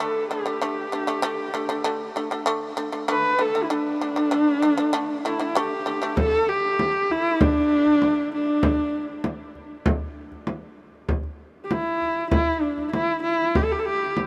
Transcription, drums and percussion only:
6.17 frame drum
6.33 frame drum
6.79 frame drum
7.10 frame drum
7.41 frame drum
7.86 frame drum
8.02 frame drum
8.63 frame drum
8.78 frame drum
9.24 frame drum
9.55 frame drum
9.86 frame drum
10.32 frame drum
10.47 frame drum
11.09 frame drum
11.23 frame drum
11.71 frame drum
12.02 frame drum
12.31 frame drum
12.78 frame drum
12.94 frame drum
13.55 frame drum
13.72 frame drum
14.17 frame drum

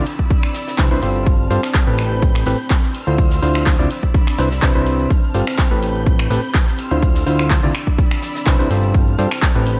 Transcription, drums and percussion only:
0.06 closed hi-hat, open hi-hat
0.19 kick, closed hi-hat
0.31 kick, closed hi-hat
0.43 finger snap
0.54 snare, closed hi-hat, open hi-hat
0.67 snare
0.78 kick, snare, clap, closed hi-hat
0.91 closed hi-hat
1.02 closed hi-hat, open hi-hat
1.16 closed hi-hat
1.26 kick, closed hi-hat
1.51 closed hi-hat, open hi-hat
1.63 finger snap, snare
1.74 kick, snare, clap, closed hi-hat
1.98 finger snap, closed hi-hat, open hi-hat
2.22 kick, closed hi-hat
2.35 finger snap
2.46 snare, closed hi-hat, open hi-hat
2.70 kick, snare, clap, closed hi-hat
2.83 snare
2.94 closed hi-hat, open hi-hat
3.07 closed hi-hat
3.18 kick, closed hi-hat
3.30 snare
3.43 closed hi-hat, open hi-hat
3.55 finger snap
3.66 kick, snare, clap, closed hi-hat
3.90 closed hi-hat, open hi-hat
4.03 kick, closed hi-hat
4.14 kick, closed hi-hat
4.27 finger snap
4.38 snare, closed hi-hat, open hi-hat
4.51 snare
4.62 kick, snare, clap, closed hi-hat
4.76 closed hi-hat
4.87 closed hi-hat, open hi-hat
4.99 closed hi-hat
5.10 kick, closed hi-hat, shaker
5.24 shaker
5.34 closed hi-hat, open hi-hat, shaker
5.47 finger snap, snare, shaker
5.58 kick, snare, clap, closed hi-hat, shaker
5.72 shaker
5.83 closed hi-hat, open hi-hat, shaker
5.96 shaker
6.06 kick, closed hi-hat, shaker
6.19 finger snap, shaker
6.31 snare, closed hi-hat, open hi-hat, shaker
6.44 shaker
6.54 kick, snare, clap, closed hi-hat, shaker
6.67 snare, shaker
6.79 closed hi-hat, open hi-hat, shaker
6.91 closed hi-hat, shaker
7.02 kick, closed hi-hat, shaker
7.15 snare, shaker
7.27 closed hi-hat, open hi-hat, shaker
7.39 finger snap, shaker
7.50 kick, snare, clap, closed hi-hat, shaker
7.64 shaker
7.75 finger snap, closed hi-hat, open hi-hat, shaker
7.87 kick, closed hi-hat, shaker
7.98 kick, closed hi-hat, shaker
8.11 finger snap, shaker
8.22 snare, closed hi-hat, open hi-hat, shaker
8.35 snare, shaker
8.46 kick, snare, clap, closed hi-hat, shaker
8.58 closed hi-hat, shaker
8.71 closed hi-hat, open hi-hat, shaker
8.83 closed hi-hat, shaker
8.94 kick, closed hi-hat, shaker
9.08 shaker
9.19 closed hi-hat, open hi-hat, shaker
9.31 finger snap, snare, shaker
9.42 kick, snare, clap, closed hi-hat, shaker
9.56 shaker
9.66 closed hi-hat, open hi-hat, shaker

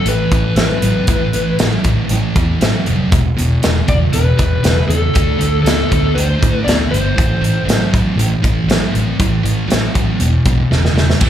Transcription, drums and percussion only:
0.06 closed hi-hat
0.31 kick, closed hi-hat
0.56 snare, closed hi-hat
0.82 closed hi-hat
1.07 kick, closed hi-hat
1.33 closed hi-hat
1.59 snare, closed hi-hat
1.84 kick, closed hi-hat
2.09 closed hi-hat
2.36 kick, closed hi-hat
2.61 snare, closed hi-hat
2.86 closed hi-hat
3.12 kick, closed hi-hat
3.39 closed hi-hat
3.63 snare, closed hi-hat
3.88 kick, closed hi-hat
4.13 closed hi-hat
4.39 kick, closed hi-hat
4.64 snare, closed hi-hat
4.90 closed hi-hat
5.15 kick, closed hi-hat
5.41 closed hi-hat
5.66 snare, closed hi-hat
5.92 kick, closed hi-hat
6.18 closed hi-hat
6.43 kick, closed hi-hat
6.68 snare, closed hi-hat
6.94 closed hi-hat
7.18 kick, closed hi-hat
7.44 closed hi-hat
7.69 snare, closed hi-hat
7.94 kick, closed hi-hat
8.19 closed hi-hat
8.44 kick, closed hi-hat
8.70 snare, closed hi-hat
8.95 closed hi-hat
9.20 kick, closed hi-hat
9.46 closed hi-hat
9.70 snare, closed hi-hat
9.95 kick, closed hi-hat
10.20 closed hi-hat
10.45 kick, closed hi-hat
10.72 snare
10.85 snare
10.98 snare
11.10 snare
11.21 kick, crash

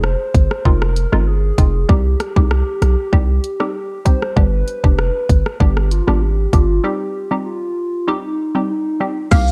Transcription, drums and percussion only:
0.04 cross-stick
0.34 kick, closed hi-hat
0.51 cross-stick
0.65 kick
0.82 cross-stick
0.96 closed hi-hat
1.13 cross-stick
1.58 kick, closed hi-hat
1.89 kick
2.20 cross-stick, closed hi-hat
2.36 kick
2.51 cross-stick
2.82 cross-stick, closed hi-hat
3.13 kick
3.44 closed hi-hat
3.60 cross-stick
4.06 kick, closed hi-hat
4.22 cross-stick
4.37 kick
4.68 closed hi-hat
4.84 kick
4.99 cross-stick
5.29 kick, closed hi-hat
5.46 cross-stick
5.60 kick
5.77 cross-stick
5.91 closed hi-hat
6.08 cross-stick
6.53 kick, closed hi-hat
9.31 kick, crash, shaker
9.48 shaker

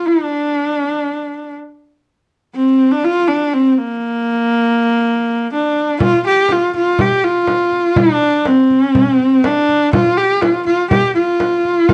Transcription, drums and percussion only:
6.00 frame drum
6.49 frame drum
6.74 frame drum
6.99 frame drum
7.24 frame drum
7.47 frame drum
7.72 frame drum
7.96 frame drum
8.45 frame drum
8.70 frame drum
8.95 frame drum
9.19 frame drum
9.44 frame drum
9.69 frame drum
9.93 frame drum
10.42 frame drum
10.67 frame drum
10.91 frame drum
11.16 frame drum
11.40 frame drum
11.65 frame drum
11.89 frame drum

